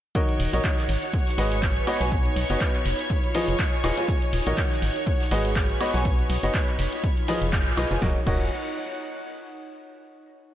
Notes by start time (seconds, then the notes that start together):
0.15 D#3 D#4 F#4 A#4 C#5 D#5 C#6, kick, closed hi-hat, tambourine
0.29 closed hi-hat
0.40 D#1 C#5, open hi-hat, ride
0.49 A#1 D#3 F#4 A#4 C#5 D#5 F#5
0.53 closed hi-hat
0.64 kick, snare, clap, closed hi-hat, tambourine
0.78 snare, closed hi-hat
0.89 G#1 F#4, open hi-hat, ride, tambourine
1.03 closed hi-hat
1.13 kick, closed hi-hat, tambourine
1.19 B4
1.27 snare, closed hi-hat
1.34 G#5
1.38 G#1 G#3 F#4 G#4 B4 D#5, snare, open hi-hat, ride, tambourine
1.52 closed hi-hat
1.63 kick, snare, clap, closed hi-hat, tambourine
1.76 closed hi-hat
1.87 B3 D#4 F#4 B4 C#5 D#5, open hi-hat, ride, tambourine, high woodblock
2.01 B1 B3 F#4 B4 C#5 G#5, snare, closed hi-hat
2.06 C#5
2.12 kick, closed hi-hat, tambourine
2.26 closed hi-hat
2.32 B5
2.36 B1, open hi-hat, ride, tambourine
2.50 F#1 B3 F#4 B4 C#5 D#5, open hi-hat
2.60 kick, snare, clap, closed hi-hat, tambourine
2.75 clap, closed hi-hat
2.85 F1 F4, snare, open hi-hat, ride, tambourine
2.99 closed hi-hat
3.10 kick, closed hi-hat, tambourine
3.15 D#5
3.24 closed hi-hat
3.35 F3 F4 G#4 B4 D#5, snare, open hi-hat, ride, tambourine
3.41 G#5
3.48 F1, closed hi-hat
3.59 kick, snare, clap, closed hi-hat, tambourine
3.73 closed hi-hat
3.84 D#1 F4 G#4 B4 D#5, snare, open hi-hat, ride, tambourine, high woodblock
3.97 F4 G#4 B4 G#5, closed hi-hat
4.08 D#4, kick, closed hi-hat, tambourine
4.22 closed hi-hat
4.33 D#1, open hi-hat, ride
4.43 C#5 F#5
4.47 A#1 D#3 F#4 A#4 C#5 D#5, closed hi-hat
4.56 kick, snare, clap, closed hi-hat, tambourine
4.71 snare, closed hi-hat
4.82 G#1 F#4, open hi-hat, ride, tambourine
4.96 closed hi-hat
5.07 kick, closed hi-hat, tambourine
5.20 snare, closed hi-hat
5.27 B4 G#5
5.31 G#1 G#3 F#4 G#4 B4 D#5, snare, open hi-hat, ride, tambourine
5.45 closed hi-hat
5.56 kick, snare, clap, closed hi-hat, tambourine
5.70 closed hi-hat
5.81 B3 D#4 F#4 B4 C#5 D#5, open hi-hat, ride, tambourine, high woodblock
5.94 B1 B3 F#4 B4 C#5 G#5, snare, closed hi-hat
6.05 kick, closed hi-hat, tambourine
6.19 closed hi-hat
6.25 C#5 B5
6.30 B1, open hi-hat, ride, tambourine
6.43 F#1 B3 F#4 B4 C#5 D#5, open hi-hat
6.54 kick, snare, clap, closed hi-hat, tambourine
6.68 clap, closed hi-hat
6.79 F1 F4, snare, open hi-hat, ride, tambourine
6.93 closed hi-hat
7.04 kick, closed hi-hat, tambourine
7.17 closed hi-hat
7.28 F3 F4 G#4 B4 D#5, snare, open hi-hat, ride, tambourine
7.35 D#5 G#5
7.42 F1, closed hi-hat
7.53 kick, snare, clap, closed hi-hat, tambourine
7.66 B1, closed hi-hat
7.77 B1 F4 G#4 B4 D#5, snare, open hi-hat, ride, tambourine, high woodblock
7.91 F1 F4 G#4 B4 G#5, closed hi-hat
8.02 D#1 D#4 F#4 A#4 C#5 D#5, kick, snare
8.10 C#5
8.18 F#5
8.27 D#1 F#4 A#4 C#5 D#5, kick, crash